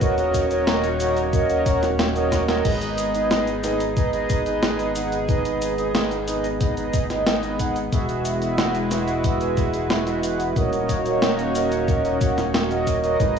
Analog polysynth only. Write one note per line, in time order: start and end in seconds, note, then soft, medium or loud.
0.01 0.15 F#4 medium
0.01 0.15 A#4 medium
0.01 0.15 C#5 medium
0.01 0.15 D#5 loud
0.18 0.46 F#4 medium
0.18 0.46 A#4 medium
0.18 0.46 C#5 medium
0.18 0.46 D#5 medium
0.51 0.65 F#4 medium
0.51 0.65 A#4 medium
0.51 0.65 C#5 medium
0.51 0.65 D#5 medium
0.67 0.86 F#4 medium
0.67 0.86 A#4 medium
0.67 0.86 C#5 medium
0.67 0.86 D#5 medium
1.00 1.19 F#4 medium
1.00 1.19 A#4 medium
1.00 1.19 C#5 medium
1.00 1.19 D#5 loud
1.33 1.47 F#4 medium
1.33 1.47 A#4 medium
1.33 1.47 C#5 medium
1.33 1.47 D#5 medium
1.50 1.63 F#4 medium
1.50 1.63 A#4 medium
1.50 1.63 C#5 medium
1.50 1.63 D#5 medium
1.66 1.85 F#4 medium
1.66 1.85 A#4 medium
1.66 1.85 C#5 medium
1.66 1.85 F#5 medium
2.15 2.44 F#4 medium
2.15 2.44 A#4 medium
2.15 2.44 C#5 medium
2.15 2.44 D#5 medium
2.48 2.63 F#4 medium
2.48 2.63 A#4 medium
2.48 2.63 C#5 medium
2.48 2.63 D#5 loud
2.65 2.79 D#4 medium
2.65 2.79 G#4 medium
2.65 2.79 B4 medium
2.65 2.79 D#5 loud
2.81 3.10 D#4 medium
2.81 3.10 G#4 medium
2.81 3.09 B4 medium
2.81 3.10 D#5 medium
3.14 3.28 D#4 medium
3.14 3.28 G#4 medium
3.14 3.28 B4 medium
3.14 3.28 D#5 medium
3.31 3.50 D#4 medium
3.31 3.50 G#4 medium
3.31 3.50 B4 medium
3.31 3.50 D#5 medium
3.64 3.83 D#4 medium
3.64 3.83 G#4 medium
3.64 3.83 B4 medium
3.64 3.83 D#5 loud
3.97 4.11 D#4 medium
3.97 4.11 G#4 medium
3.97 4.11 B4 medium
3.97 4.11 D#5 loud
4.13 4.42 D#4 medium
4.13 4.42 G#4 medium
4.13 4.42 B4 medium
4.13 4.42 D#5 medium
4.46 4.60 D#4 medium
4.46 4.60 G#4 medium
4.46 4.60 B4 medium
4.46 4.60 D#5 medium
4.63 4.92 D#4 medium
4.63 4.92 G#4 medium
4.63 4.92 B4 medium
4.63 4.92 D#5 medium
4.96 5.14 D#4 medium
4.96 5.14 G#4 medium
4.96 5.15 B4 medium
4.96 5.15 F#5 medium
5.29 5.43 D#4 medium
5.29 5.43 G#4 medium
5.29 5.43 B4 medium
5.29 5.43 D#5 loud
5.45 5.73 D#4 medium
5.45 5.73 G#4 medium
5.45 5.73 B4 medium
5.45 5.73 D#5 medium
5.78 5.92 D#4 medium
5.78 5.92 G#4 medium
5.78 5.92 B4 medium
5.78 5.92 D#5 medium
5.95 6.13 D#4 medium
5.95 6.13 G#4 medium
5.95 6.13 B4 medium
5.95 6.13 D#5 medium
6.27 6.46 D#4 medium
6.27 6.46 G#4 medium
6.27 6.46 B4 medium
6.27 6.46 D#5 loud
6.61 6.75 D#4 medium
6.61 6.75 G#4 medium
6.61 6.75 B4 medium
6.61 6.75 D#5 medium
6.77 7.06 D#4 medium
6.77 7.06 G#4 medium
6.77 7.06 B4 medium
6.77 7.06 D#5 loud
7.10 7.24 D#4 medium
7.10 7.24 G#4 medium
7.10 7.24 B4 medium
7.10 7.24 D#5 medium
7.27 7.56 D#4 medium
7.27 7.56 G#4 medium
7.27 7.56 B4 medium
7.59 7.78 D#4 medium
7.59 7.78 G#4 medium
7.59 7.78 B4 medium
7.59 7.78 F#5 medium
7.92 8.07 F#4 medium
7.92 8.07 G#4 medium
7.92 8.07 B4 medium
7.92 8.07 E5 loud
8.09 8.37 F#4 medium
8.09 8.37 G#4 medium
8.09 8.37 B4 medium
8.09 8.37 E5 medium
8.42 8.56 F#4 medium
8.42 8.56 G#4 medium
8.42 8.56 B4 medium
8.42 8.56 E5 medium
8.59 8.77 F#4 medium
8.59 8.77 G#4 medium
8.59 8.77 B4 medium
8.59 8.77 E5 medium
8.91 9.10 F#4 medium
8.91 9.10 G#4 medium
8.91 9.10 B4 medium
8.91 9.10 E5 loud
9.25 9.39 F#4 medium
9.25 9.39 G#4 medium
9.25 9.39 B4 medium
9.25 9.39 E5 medium
9.41 9.70 F#4 medium
9.41 9.70 G#4 medium
9.41 9.70 B4 medium
9.41 9.70 E5 medium
9.74 9.88 F#4 medium
9.74 9.88 G#4 medium
9.74 9.88 B4 medium
9.74 9.88 E5 medium
9.90 10.19 F#4 medium
9.90 10.19 G#4 medium
9.90 10.19 B4 medium
9.90 10.19 E5 medium
10.23 10.42 F#4 medium
10.23 10.42 G#4 medium
10.23 10.42 B4 medium
10.23 10.42 F#5 medium
10.56 10.70 F#4 medium
10.56 10.70 A#4 medium
10.56 10.70 C#5 medium
10.56 10.70 D#5 loud
10.73 11.01 F#4 medium
10.73 11.01 A#4 medium
10.73 11.01 C#5 medium
10.73 11.01 D#5 medium
11.06 11.20 F#4 medium
11.06 11.20 A#4 medium
11.06 11.20 C#5 medium
11.06 11.20 D#5 medium
11.22 11.41 F#4 medium
11.22 11.41 A#4 medium
11.22 11.41 C#5 medium
11.22 11.41 D#5 medium
11.55 11.74 F#4 medium
11.55 11.74 A#4 medium
11.55 11.74 C#5 medium
11.55 11.74 D#5 loud
11.88 12.02 F#4 medium
11.88 12.02 A#4 medium
11.88 12.02 C#5 medium
11.88 12.02 D#5 medium
12.05 12.18 F#4 medium
12.05 12.18 A#4 medium
12.05 12.18 C#5 medium
12.05 12.18 D#5 medium
12.21 12.40 F#4 medium
12.21 12.40 A#4 medium
12.21 12.40 C#5 medium
12.21 12.40 F#5 medium
12.71 12.99 F#4 medium
12.71 12.99 A#4 medium
12.71 12.99 C#5 medium
12.71 12.99 D#5 medium
13.04 13.18 F#4 medium
13.04 13.18 A#4 medium
13.04 13.18 C#5 medium
13.04 13.18 D#5 loud
13.20 13.34 D#4 medium
13.20 13.34 G#4 medium
13.20 13.34 B4 medium